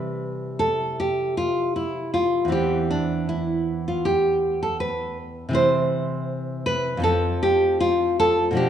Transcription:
Already playing: C3 E3 G3 B4
0.59 A4
1.00 G4
1.37 F4
1.76 E4
2.14 F4
2.45 E2 E3
2.49 C4 G4
2.90 D4
3.29 E4
3.88 F4
4.05 G4
4.63 A4
4.80 B4
5.49 C3 E3
5.53 C4 C5
6.66 B4
6.97 F2 F3
7.02 C4 A4
7.43 G4
7.80 F4
8.20 A4
8.51 B2 F3
8.55 D4 G4

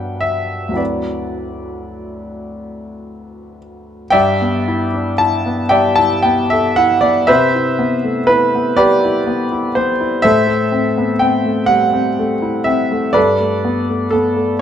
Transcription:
Already playing: G2 F#3 B3 D4 B4 F#5 G5
0.21 E5
0.69 D2 F#3
0.73 C4 E4 B4 D5
4.10 G2 D5 E5 G5
4.42 B3
4.68 E4
4.94 D4
5.18 E4 A5
5.46 B3
5.69 G3 D5 E5 G5
5.96 E4 A5
6.23 B3 G5
6.50 A4 E5
6.76 E4 F#5
7.01 B3 D5
7.27 C3 B4 C5 E5
7.55 E4
7.79 B3
8.04 A3
8.27 E4 B4
8.55 B3
8.77 G3 G4 B4 D5
9.05 E4
9.27 B3
9.52 E4
9.75 B3 C5
10.01 E4
10.22 A2 A4 C5 E5
10.47 A3
10.72 C4
10.98 B3
11.19 C4 G5
11.45 A3
11.66 G3 F#5
11.93 C4
12.19 A3
12.42 E4
12.64 C4 E5
12.92 A3
13.13 G2 A4 B4 D5
13.40 A3
13.65 B3
13.89 A3
14.11 B3 A4
14.37 A3

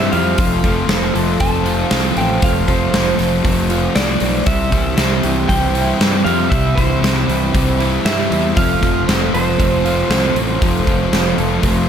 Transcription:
Already playing: E3 G3 C4 E4 G4 C5 E5 C6
0.12 F2 G3 F5, open hi-hat
0.38 F1 F3 A4 F5, kick, open hi-hat
0.64 F1 F3 A3, kick, open hi-hat
0.89 F1 C4, snare, open hi-hat
1.15 F1 F3 A4, open hi-hat
1.40 F1 A3 C4 A5, kick, open hi-hat
1.66 F4, open hi-hat
1.91 C2 F3 C4, snare, open hi-hat
2.16 A1 A3 C4 G5, open hi-hat
2.42 F1 F3 F5, kick, open hi-hat
2.68 F1 F3 A3 C5, kick, open hi-hat
2.93 F1 C4, snare, open hi-hat
3.18 F1 F3 A4, snare, open hi-hat
3.44 F1 A3 C4, kick, open hi-hat
3.69 F4, open hi-hat
3.95 C2 C4 D5, snare, open hi-hat
4.20 B1 A3 C4, open hi-hat
4.46 C2 C3 G3 G4 E5, kick, open hi-hat
4.72 C2 E3 G3, kick, open hi-hat
4.97 C2 C4, snare, open hi-hat
5.22 C2 E3 G4, open hi-hat
5.48 C2 G3 C4 G5, kick, open hi-hat
5.74 E4, open hi-hat
5.99 G2 G3 C4, snare, open hi-hat
6.24 F2 G3 C4 F5, open hi-hat
6.50 C2 C3 G3 E5 B5, kick, open hi-hat
6.75 C2 E3 G3 C5, kick, open hi-hat
7.02 C2 C4, snare, open hi-hat
7.28 C2 E3 G4, open hi-hat
7.54 C2 G3 C4, kick, open hi-hat
7.80 E4, open hi-hat
8.05 G2 G3 C4 E5, snare, open hi-hat
8.31 E2 G3 C4, open hi-hat
8.56 F1 F3 A4 C5 F5 C6, kick, open hi-hat
8.82 F1 F3 A3, kick, open hi-hat
9.08 F1 C4, snare, open hi-hat
9.33 F1 F3 A4 C5, open hi-hat
9.59 F1 A3 C4, kick, open hi-hat
9.85 F4, open hi-hat
10.10 C2 F3 C4, snare, open hi-hat
10.35 A1 A3 C4, open hi-hat
10.62 F1 F3, kick, open hi-hat
10.87 F1 F3 A3, kick, open hi-hat
11.12 F1 C4, snare, open hi-hat
11.38 F1 F3 A4, open hi-hat
11.63 F1 A3 C4, kick, open hi-hat

